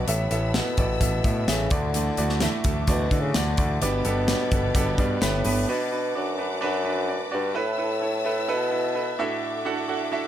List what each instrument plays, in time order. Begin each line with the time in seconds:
Already playing: grand piano B3 D4 F#4 B4 D5 E5, string section B5
0.07 picked electric bass A1, bassoon A2, grand piano B3 E4 A4 E5, string section A4 E5 E6, closed hi-hat
0.31 picked electric bass A1, grand piano B3 E4 A4 E5, closed hi-hat
0.53 bassoon B2, grand piano B3 E4 A4 F#5, snare, closed hi-hat
0.77 picked electric bass A1, bassoon B2, grand piano B3 E4 A4 D5, kick, closed hi-hat
1.01 picked electric bass A1, grand piano B3 E4 A4 E5, kick, closed hi-hat
1.24 picked electric bass A2, grand piano B3 E4 A4 E5, kick, closed hi-hat
1.48 picked electric bass A1, bassoon C#3, grand piano B3 E4 A4 E5, snare, closed hi-hat
1.70 picked electric bass D2, grand piano A2 A3 E4 F#4 D5, bassoon D3, string section F#4 A5 D6, kick, closed hi-hat
1.94 steel-string acoustic guitar D3 E3 A3 D4 F#4, closed hi-hat
2.17 picked electric bass D2, grand piano A3 E4 F#4 D5, steel-string acoustic guitar A3 D4 F#4, closed hi-hat
2.29 snare
2.40 steel-string acoustic guitar E3 A3 D4 F#4, grand piano A3 E4 F#4 E5, snare, closed hi-hat
2.64 picked electric bass D2, grand piano A3 E4 F#4 A4, steel-string acoustic guitar A3 D4 F#4, kick, closed hi-hat
2.87 picked electric bass D2, bassoon B2, steel-string acoustic guitar D3 E3 A3 D4 F#4, grand piano A3 E4 F#4 D5, kick, closed hi-hat
3.11 picked electric bass D3, grand piano A3 E4 F#4 D5, steel-string acoustic guitar A3 D4 F#4, kick, closed hi-hat
3.21 bassoon C#3
3.34 picked electric bass D2, bassoon D3, steel-string acoustic guitar E3 A3 D4 F#4, grand piano A3 E4 F#4 D5, snare, closed hi-hat
3.57 picked electric bass D2, grand piano A3 E4 F#4 D5, steel-string acoustic guitar A3 D4 F#4, kick, closed hi-hat
3.81 picked electric bass G1, steel-string acoustic guitar G2 D3 G3 B3 D4 G4, grand piano G2 D3 B3 D4 G4 D5, bassoon B2, string section G4 D5 B5, closed hi-hat
4.04 picked electric bass G1, steel-string acoustic guitar G3 B3 D4 G4, grand piano B3 D4 G4 A4, closed hi-hat
4.27 steel-string acoustic guitar G3 B3 D4 G4, grand piano B3 D4 G4 C#5, snare, closed hi-hat
4.51 picked electric bass G1, steel-string acoustic guitar G3 B3 D4 G4, grand piano B3 D4 G4 A4, kick, closed hi-hat
4.74 picked electric bass G1, steel-string acoustic guitar G2 D3 G3 B3 D4 G4, grand piano B3 D4 G4 A4, kick, closed hi-hat
4.98 picked electric bass G2, steel-string acoustic guitar G3 B3 D4 G4, grand piano B3 D4 G4 D5, kick, closed hi-hat
5.21 picked electric bass G1, bassoon A2, steel-string acoustic guitar G3 B3 D4 G4, grand piano B3 D4 G4 B4, snare, closed hi-hat
5.44 picked electric bass G1, steel-string acoustic guitar G3 B3 D4 G4, grand piano B3 D4 G4 B4, open hi-hat
5.68 bassoon B2, grand piano D4 F#4 B4, string section B4 D5 F#5 D6
5.91 grand piano D4 F#4 B4
6.15 bassoon F#2, grand piano D4 F#4 D5
6.38 grand piano D4 F#4 B4
6.61 bassoon F#2, grand piano D4 F#4 B4
6.84 grand piano D4 F#4 B4
7.08 grand piano D4 F#4 D5
7.31 bassoon G2, grand piano D4 F#4 D5
7.55 bassoon A2, grand piano E4 A4 B4, string section E5 A5 E6
7.78 grand piano E4 A4 B4
8.02 grand piano E4 A4 C#5
8.25 grand piano E4 A4 B4
8.48 bassoon B2, grand piano E4 A4 B4
8.71 grand piano E4 A4 B4
8.95 grand piano E4 A4 B4
9.18 grand piano A2 D4 E4 F#4 A4 E5, string section A4 F#5 D6
9.65 grand piano D4 E4 F#4 A4 F#5
9.88 grand piano D4 E4 F#4 A4 F#5
10.12 grand piano D4 E4 F#4 A4 E5